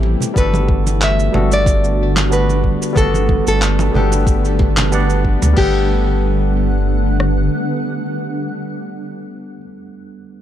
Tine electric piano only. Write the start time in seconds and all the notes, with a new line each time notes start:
Already playing: G3 B3 C4 E4 A4
0.34 G3 B3 D4
0.38 F#4 A4
1.32 G3 B3 D4 F#4 A4
2.30 G3 B3 D4 F#4 B4
2.93 G3 B3 D4
2.98 F#4 A4
3.91 G3 B3 D4
3.96 A4 F#5
4.91 G3 B3 D4 D5 F#5
5.53 G3 B3
5.58 D4 F#5
5.63 A4